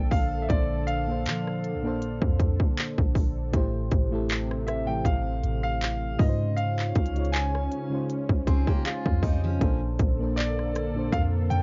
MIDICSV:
0, 0, Header, 1, 7, 480
1, 0, Start_track
1, 0, Tempo, 759494
1, 315, Time_signature, 4, 2, 24, 8
1, 7348, End_track
2, 0, Start_track
2, 0, Title_t, "Grand piano"
2, 0, Program_c, 0, 0
2, 0, Note_on_c, 0, 79, 108
2, 70, Note_on_c, 0, 77, 101
2, 87, Note_off_c, 0, 79, 0
2, 266, Note_on_c, 0, 76, 72
2, 278, Note_off_c, 0, 77, 0
2, 308, Note_on_c, 0, 74, 86
2, 311, Note_off_c, 0, 76, 0
2, 549, Note_on_c, 0, 77, 106
2, 559, Note_off_c, 0, 74, 0
2, 1487, Note_off_c, 0, 77, 0
2, 2949, Note_on_c, 0, 76, 77
2, 3078, Note_on_c, 0, 79, 82
2, 3086, Note_off_c, 0, 76, 0
2, 3184, Note_off_c, 0, 79, 0
2, 3189, Note_on_c, 0, 77, 87
2, 3551, Note_off_c, 0, 77, 0
2, 3560, Note_on_c, 0, 77, 105
2, 3910, Note_on_c, 0, 75, 87
2, 3924, Note_off_c, 0, 77, 0
2, 4148, Note_on_c, 0, 77, 96
2, 4160, Note_off_c, 0, 75, 0
2, 4628, Note_on_c, 0, 80, 98
2, 4646, Note_off_c, 0, 77, 0
2, 5086, Note_off_c, 0, 80, 0
2, 6548, Note_on_c, 0, 74, 86
2, 7031, Note_on_c, 0, 77, 106
2, 7046, Note_off_c, 0, 74, 0
2, 7085, Note_off_c, 0, 77, 0
2, 7269, Note_on_c, 0, 79, 110
2, 7348, Note_off_c, 0, 79, 0
2, 7348, End_track
3, 0, Start_track
3, 0, Title_t, "FM electric piano"
3, 0, Program_c, 1, 5
3, 0, Control_c, 1, 64, 127
3, 0, Note_on_c, 1, 46, 73
3, 0, Note_on_c, 1, 58, 66
3, 0, Note_on_c, 1, 62, 69
3, 0, Note_on_c, 1, 69, 65
3, 0, Note_on_c, 1, 72, 80
3, 0, Note_on_c, 1, 74, 83
3, 303, Note_off_c, 1, 46, 0
3, 303, Note_on_c, 1, 46, 72
3, 310, Note_off_c, 1, 58, 0
3, 310, Note_on_c, 1, 58, 68
3, 318, Note_off_c, 1, 62, 0
3, 318, Note_on_c, 1, 62, 69
3, 326, Note_off_c, 1, 69, 0
3, 326, Note_on_c, 1, 69, 72
3, 334, Note_off_c, 1, 72, 0
3, 334, Note_on_c, 1, 72, 77
3, 570, Note_off_c, 1, 46, 0
3, 574, Note_off_c, 1, 58, 0
3, 578, Note_off_c, 1, 62, 0
3, 582, Note_off_c, 1, 69, 0
3, 586, Note_off_c, 1, 72, 0
3, 671, Note_on_c, 1, 46, 72
3, 680, Note_on_c, 1, 58, 67
3, 687, Note_on_c, 1, 62, 69
3, 695, Note_on_c, 1, 69, 71
3, 703, Note_on_c, 1, 72, 83
3, 1015, Note_off_c, 1, 46, 0
3, 1020, Note_off_c, 1, 58, 0
3, 1023, Note_off_c, 1, 62, 0
3, 1027, Note_off_c, 1, 69, 0
3, 1031, Note_off_c, 1, 72, 0
3, 1151, Note_on_c, 1, 46, 84
3, 1159, Note_on_c, 1, 58, 82
3, 1166, Note_on_c, 1, 62, 82
3, 1174, Note_on_c, 1, 69, 80
3, 1182, Note_on_c, 1, 72, 98
3, 1848, Note_off_c, 1, 46, 0
3, 1852, Note_off_c, 1, 58, 0
3, 1856, Note_off_c, 1, 62, 0
3, 1860, Note_off_c, 1, 69, 0
3, 1863, Note_off_c, 1, 72, 0
3, 2221, Note_on_c, 1, 45, 89
3, 2229, Note_on_c, 1, 57, 83
3, 2236, Note_on_c, 1, 64, 83
3, 2243, Control_c, 1, 64, 0
3, 2244, Note_on_c, 1, 67, 82
3, 2245, Note_off_c, 1, 74, 0
3, 2252, Note_on_c, 1, 72, 105
3, 2339, Control_c, 1, 64, 127
3, 2489, Note_off_c, 1, 45, 0
3, 2493, Note_off_c, 1, 57, 0
3, 2497, Note_off_c, 1, 64, 0
3, 2501, Note_off_c, 1, 67, 0
3, 2505, Note_off_c, 1, 72, 0
3, 2591, Note_on_c, 1, 45, 87
3, 2600, Note_on_c, 1, 57, 77
3, 2607, Note_on_c, 1, 64, 84
3, 2615, Note_on_c, 1, 67, 80
3, 2622, Note_on_c, 1, 69, 97
3, 2935, Note_off_c, 1, 45, 0
3, 2940, Note_off_c, 1, 57, 0
3, 2944, Note_off_c, 1, 64, 0
3, 2948, Note_off_c, 1, 67, 0
3, 2951, Note_off_c, 1, 69, 0
3, 3071, Note_on_c, 1, 45, 75
3, 3079, Note_on_c, 1, 57, 71
3, 3087, Note_on_c, 1, 52, 66
3, 3095, Note_on_c, 1, 67, 66
3, 3103, Note_on_c, 1, 69, 79
3, 3768, Note_off_c, 1, 45, 0
3, 3772, Note_off_c, 1, 57, 0
3, 3776, Note_off_c, 1, 52, 0
3, 3780, Note_off_c, 1, 67, 0
3, 3784, Note_off_c, 1, 69, 0
3, 3901, Note_on_c, 1, 49, 80
3, 3909, Note_on_c, 1, 56, 78
3, 3916, Note_on_c, 1, 63, 70
3, 3923, Control_c, 1, 64, 0
3, 3925, Note_on_c, 1, 65, 73
3, 3933, Note_on_c, 1, 71, 70
3, 3968, Note_off_c, 1, 71, 0
3, 3974, Note_on_c, 1, 72, 89
3, 4051, Control_c, 1, 64, 127
3, 4388, Note_off_c, 1, 49, 0
3, 4392, Note_off_c, 1, 56, 0
3, 4396, Note_off_c, 1, 63, 0
3, 4400, Note_off_c, 1, 65, 0
3, 4425, Note_off_c, 1, 72, 0
3, 4510, Note_on_c, 1, 49, 76
3, 4518, Note_on_c, 1, 56, 67
3, 4525, Note_on_c, 1, 63, 66
3, 4533, Note_on_c, 1, 65, 67
3, 4540, Note_on_c, 1, 73, 77
3, 4855, Note_off_c, 1, 49, 0
3, 4859, Note_off_c, 1, 56, 0
3, 4863, Note_off_c, 1, 63, 0
3, 4867, Note_off_c, 1, 65, 0
3, 4870, Note_off_c, 1, 73, 0
3, 4990, Note_on_c, 1, 49, 73
3, 4997, Note_on_c, 1, 56, 68
3, 5005, Note_on_c, 1, 63, 65
3, 5013, Note_on_c, 1, 65, 66
3, 5020, Note_on_c, 1, 72, 79
3, 5355, Note_on_c, 1, 84, 78
3, 5476, Note_off_c, 1, 84, 0
3, 5486, Note_on_c, 1, 80, 76
3, 5588, Note_off_c, 1, 80, 0
3, 5596, Note_on_c, 1, 77, 68
3, 5687, Note_off_c, 1, 49, 0
3, 5691, Note_off_c, 1, 56, 0
3, 5695, Note_off_c, 1, 63, 0
3, 5699, Note_off_c, 1, 65, 0
3, 5703, Note_off_c, 1, 72, 0
3, 5819, Note_off_c, 1, 77, 0
3, 5836, Note_on_c, 1, 75, 72
3, 6059, Note_off_c, 1, 75, 0
3, 6062, Note_on_c, 1, 46, 89
3, 6069, Note_on_c, 1, 58, 80
3, 6076, Note_on_c, 1, 62, 82
3, 6084, Control_c, 1, 64, 0
3, 6084, Note_on_c, 1, 69, 82
3, 6092, Note_on_c, 1, 72, 94
3, 6180, Control_c, 1, 64, 127
3, 6330, Note_off_c, 1, 46, 0
3, 6333, Note_off_c, 1, 58, 0
3, 6337, Note_off_c, 1, 62, 0
3, 6341, Note_off_c, 1, 69, 0
3, 6345, Note_off_c, 1, 72, 0
3, 6430, Note_on_c, 1, 46, 74
3, 6438, Note_on_c, 1, 58, 67
3, 6446, Note_on_c, 1, 62, 70
3, 6453, Note_on_c, 1, 69, 66
3, 6462, Note_on_c, 1, 72, 82
3, 6775, Note_off_c, 1, 46, 0
3, 6779, Note_off_c, 1, 58, 0
3, 6783, Note_off_c, 1, 62, 0
3, 6787, Note_off_c, 1, 69, 0
3, 6791, Note_off_c, 1, 72, 0
3, 6912, Note_on_c, 1, 46, 74
3, 6919, Note_on_c, 1, 58, 67
3, 6927, Note_on_c, 1, 62, 68
3, 6934, Note_on_c, 1, 69, 69
3, 6942, Note_on_c, 1, 72, 79
3, 7348, Note_off_c, 1, 46, 0
3, 7348, Note_off_c, 1, 58, 0
3, 7348, Note_off_c, 1, 62, 0
3, 7348, Note_off_c, 1, 69, 0
3, 7348, Note_off_c, 1, 72, 0
3, 7348, End_track
4, 0, Start_track
4, 0, Title_t, "Steel-string acoustic guitar"
4, 0, Program_c, 2, 25
4, 5356, Note_on_c, 2, 68, 79
4, 5359, Note_on_c, 2, 60, 65
4, 5478, Note_off_c, 2, 68, 0
4, 5481, Note_off_c, 2, 60, 0
4, 5485, Note_on_c, 2, 67, 83
4, 5489, Note_on_c, 2, 58, 75
4, 5590, Note_off_c, 2, 67, 0
4, 5592, Note_off_c, 2, 58, 0
4, 5595, Note_on_c, 2, 65, 84
4, 5598, Note_on_c, 2, 56, 68
4, 5823, Note_off_c, 2, 65, 0
4, 5825, Note_off_c, 2, 56, 0
4, 5834, Note_on_c, 2, 63, 80
4, 5837, Note_on_c, 2, 55, 68
4, 5958, Note_off_c, 2, 63, 0
4, 5959, Note_off_c, 2, 55, 0
4, 5964, Note_on_c, 2, 61, 75
4, 5968, Note_on_c, 2, 53, 60
4, 6192, Note_off_c, 2, 61, 0
4, 6195, Note_off_c, 2, 53, 0
4, 7348, End_track
5, 0, Start_track
5, 0, Title_t, "Analog synth pad"
5, 0, Program_c, 3, 89
5, 0, Note_on_c, 3, 50, 78
5, 0, Note_on_c, 3, 58, 72
5, 0, Note_on_c, 3, 69, 85
5, 296, Note_off_c, 3, 58, 0
5, 2210, Note_off_c, 3, 50, 0
5, 2210, Note_off_c, 3, 69, 0
5, 2235, Note_on_c, 3, 48, 79
5, 3898, Note_off_c, 3, 48, 0
5, 3915, Note_on_c, 3, 49, 78
5, 3915, Note_on_c, 3, 61, 77
5, 6054, Note_off_c, 3, 49, 0
5, 6054, Note_off_c, 3, 61, 0
5, 6075, Note_on_c, 3, 69, 82
5, 6076, Note_on_c, 3, 50, 78
5, 6076, Note_on_c, 3, 58, 73
5, 7348, Note_off_c, 3, 50, 0
5, 7348, Note_off_c, 3, 58, 0
5, 7348, Note_off_c, 3, 69, 0
5, 7348, End_track
6, 0, Start_track
6, 0, Title_t, "808-style bass"
6, 0, Program_c, 4, 38
6, 0, Note_on_c, 4, 34, 99
6, 301, Note_off_c, 4, 34, 0
6, 315, Note_on_c, 4, 34, 105
6, 795, Note_on_c, 4, 53, 96
6, 805, Note_off_c, 4, 34, 0
6, 1099, Note_on_c, 4, 34, 94
6, 1109, Note_off_c, 4, 53, 0
6, 1389, Note_off_c, 4, 34, 0
6, 1401, Note_on_c, 4, 41, 101
6, 1633, Note_off_c, 4, 41, 0
6, 1884, Note_on_c, 4, 34, 101
6, 2221, Note_off_c, 4, 34, 0
6, 2235, Note_on_c, 4, 33, 111
6, 2466, Note_off_c, 4, 33, 0
6, 2476, Note_on_c, 4, 33, 109
6, 3170, Note_off_c, 4, 33, 0
6, 3192, Note_on_c, 4, 33, 108
6, 3424, Note_off_c, 4, 33, 0
6, 3435, Note_on_c, 4, 33, 101
6, 3896, Note_off_c, 4, 33, 0
6, 3914, Note_on_c, 4, 44, 109
6, 4375, Note_off_c, 4, 44, 0
6, 4396, Note_on_c, 4, 37, 107
6, 4856, Note_off_c, 4, 37, 0
6, 5241, Note_on_c, 4, 37, 105
6, 5473, Note_off_c, 4, 37, 0
6, 5724, Note_on_c, 4, 41, 105
6, 6061, Note_off_c, 4, 41, 0
6, 6075, Note_on_c, 4, 34, 114
6, 6305, Note_off_c, 4, 34, 0
6, 6316, Note_on_c, 4, 34, 107
6, 7010, Note_off_c, 4, 34, 0
6, 7032, Note_on_c, 4, 41, 107
6, 7264, Note_off_c, 4, 41, 0
6, 7276, Note_on_c, 4, 41, 105
6, 7348, Note_off_c, 4, 41, 0
6, 7348, End_track
7, 0, Start_track
7, 0, Title_t, "Drums"
7, 73, Note_on_c, 9, 36, 91
7, 78, Note_on_c, 9, 46, 84
7, 136, Note_off_c, 9, 36, 0
7, 141, Note_off_c, 9, 46, 0
7, 315, Note_on_c, 9, 36, 104
7, 315, Note_on_c, 9, 42, 66
7, 378, Note_off_c, 9, 36, 0
7, 378, Note_off_c, 9, 42, 0
7, 554, Note_on_c, 9, 42, 71
7, 617, Note_off_c, 9, 42, 0
7, 794, Note_on_c, 9, 42, 66
7, 804, Note_on_c, 9, 39, 122
7, 857, Note_off_c, 9, 42, 0
7, 868, Note_off_c, 9, 39, 0
7, 931, Note_on_c, 9, 37, 61
7, 994, Note_off_c, 9, 37, 0
7, 1036, Note_on_c, 9, 42, 66
7, 1100, Note_off_c, 9, 42, 0
7, 1276, Note_on_c, 9, 42, 71
7, 1339, Note_off_c, 9, 42, 0
7, 1401, Note_on_c, 9, 36, 95
7, 1464, Note_off_c, 9, 36, 0
7, 1514, Note_on_c, 9, 36, 85
7, 1516, Note_on_c, 9, 42, 70
7, 1577, Note_off_c, 9, 36, 0
7, 1579, Note_off_c, 9, 42, 0
7, 1642, Note_on_c, 9, 36, 92
7, 1705, Note_off_c, 9, 36, 0
7, 1754, Note_on_c, 9, 42, 73
7, 1761, Note_on_c, 9, 39, 117
7, 1817, Note_off_c, 9, 42, 0
7, 1824, Note_off_c, 9, 39, 0
7, 1884, Note_on_c, 9, 36, 96
7, 1947, Note_off_c, 9, 36, 0
7, 1992, Note_on_c, 9, 36, 87
7, 1996, Note_on_c, 9, 46, 79
7, 2055, Note_off_c, 9, 36, 0
7, 2059, Note_off_c, 9, 46, 0
7, 2234, Note_on_c, 9, 42, 70
7, 2235, Note_on_c, 9, 36, 105
7, 2298, Note_off_c, 9, 36, 0
7, 2298, Note_off_c, 9, 42, 0
7, 2474, Note_on_c, 9, 42, 76
7, 2476, Note_on_c, 9, 36, 106
7, 2537, Note_off_c, 9, 42, 0
7, 2539, Note_off_c, 9, 36, 0
7, 2713, Note_on_c, 9, 42, 65
7, 2724, Note_on_c, 9, 39, 121
7, 2777, Note_off_c, 9, 42, 0
7, 2787, Note_off_c, 9, 39, 0
7, 2852, Note_on_c, 9, 37, 65
7, 2915, Note_off_c, 9, 37, 0
7, 2956, Note_on_c, 9, 42, 70
7, 2959, Note_on_c, 9, 37, 89
7, 3019, Note_off_c, 9, 42, 0
7, 3022, Note_off_c, 9, 37, 0
7, 3191, Note_on_c, 9, 36, 92
7, 3196, Note_on_c, 9, 42, 73
7, 3254, Note_off_c, 9, 36, 0
7, 3259, Note_off_c, 9, 42, 0
7, 3435, Note_on_c, 9, 42, 69
7, 3498, Note_off_c, 9, 42, 0
7, 3675, Note_on_c, 9, 42, 70
7, 3681, Note_on_c, 9, 39, 119
7, 3738, Note_off_c, 9, 42, 0
7, 3745, Note_off_c, 9, 39, 0
7, 3914, Note_on_c, 9, 36, 115
7, 3916, Note_on_c, 9, 46, 80
7, 3977, Note_off_c, 9, 36, 0
7, 3979, Note_off_c, 9, 46, 0
7, 4155, Note_on_c, 9, 42, 72
7, 4218, Note_off_c, 9, 42, 0
7, 4291, Note_on_c, 9, 39, 70
7, 4354, Note_off_c, 9, 39, 0
7, 4394, Note_on_c, 9, 42, 73
7, 4395, Note_on_c, 9, 36, 106
7, 4457, Note_off_c, 9, 42, 0
7, 4459, Note_off_c, 9, 36, 0
7, 4459, Note_on_c, 9, 42, 66
7, 4522, Note_off_c, 9, 42, 0
7, 4524, Note_on_c, 9, 42, 50
7, 4579, Note_off_c, 9, 42, 0
7, 4579, Note_on_c, 9, 42, 41
7, 4632, Note_off_c, 9, 42, 0
7, 4632, Note_on_c, 9, 42, 67
7, 4643, Note_on_c, 9, 39, 112
7, 4695, Note_off_c, 9, 42, 0
7, 4706, Note_off_c, 9, 39, 0
7, 4770, Note_on_c, 9, 37, 64
7, 4834, Note_off_c, 9, 37, 0
7, 4876, Note_on_c, 9, 42, 65
7, 4939, Note_off_c, 9, 42, 0
7, 5117, Note_on_c, 9, 42, 73
7, 5180, Note_off_c, 9, 42, 0
7, 5241, Note_on_c, 9, 36, 96
7, 5304, Note_off_c, 9, 36, 0
7, 5354, Note_on_c, 9, 36, 87
7, 5356, Note_on_c, 9, 42, 66
7, 5417, Note_off_c, 9, 36, 0
7, 5419, Note_off_c, 9, 42, 0
7, 5481, Note_on_c, 9, 36, 91
7, 5544, Note_off_c, 9, 36, 0
7, 5594, Note_on_c, 9, 42, 73
7, 5601, Note_on_c, 9, 39, 117
7, 5658, Note_off_c, 9, 42, 0
7, 5664, Note_off_c, 9, 39, 0
7, 5724, Note_on_c, 9, 36, 93
7, 5787, Note_off_c, 9, 36, 0
7, 5832, Note_on_c, 9, 36, 91
7, 5837, Note_on_c, 9, 46, 82
7, 5895, Note_off_c, 9, 36, 0
7, 5900, Note_off_c, 9, 46, 0
7, 6074, Note_on_c, 9, 36, 111
7, 6075, Note_on_c, 9, 42, 72
7, 6138, Note_off_c, 9, 36, 0
7, 6138, Note_off_c, 9, 42, 0
7, 6314, Note_on_c, 9, 42, 72
7, 6316, Note_on_c, 9, 36, 108
7, 6378, Note_off_c, 9, 42, 0
7, 6379, Note_off_c, 9, 36, 0
7, 6553, Note_on_c, 9, 42, 70
7, 6564, Note_on_c, 9, 39, 118
7, 6616, Note_off_c, 9, 42, 0
7, 6627, Note_off_c, 9, 39, 0
7, 6692, Note_on_c, 9, 37, 63
7, 6755, Note_off_c, 9, 37, 0
7, 6796, Note_on_c, 9, 42, 67
7, 6800, Note_on_c, 9, 37, 85
7, 6860, Note_off_c, 9, 42, 0
7, 6863, Note_off_c, 9, 37, 0
7, 7031, Note_on_c, 9, 36, 91
7, 7036, Note_on_c, 9, 42, 70
7, 7094, Note_off_c, 9, 36, 0
7, 7099, Note_off_c, 9, 42, 0
7, 7275, Note_on_c, 9, 42, 65
7, 7338, Note_off_c, 9, 42, 0
7, 7348, End_track
0, 0, End_of_file